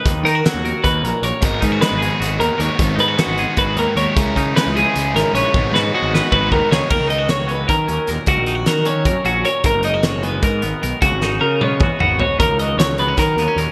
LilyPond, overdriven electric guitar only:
\new Staff \with { instrumentName = "Overdriven electric guitar" } { \time 7/8 \key gis \minor \tempo 4 = 153 r2. r8 | <gis, dis gis b dis'>8 <gis b dis'>8 <dis gis b dis'>8 <gis b dis'>8 <gis, dis gis b dis'>4 <dis gis b dis'>8 | <gis, dis gis b dis'>8 <gis b dis'>8 <dis gis b dis'>8 <gis b dis'>8 <gis, dis gis b dis'>4 <dis gis b dis'>8 | <cis gis cis' e'>8 <gis cis' e'>8 <cis gis cis' e'>8 <gis cis' e'>8 <cis gis cis' e'>4 <cis gis cis' e'>8 |
<gis, dis gis b dis'>8 <gis b dis'>8 <dis gis b dis'>8 <gis b dis'>8 <gis, dis gis b dis'>4 <dis gis b dis'>8 | r2. r8 | r2. r8 | r2. r8 |
r2. r8 | r2. r8 | }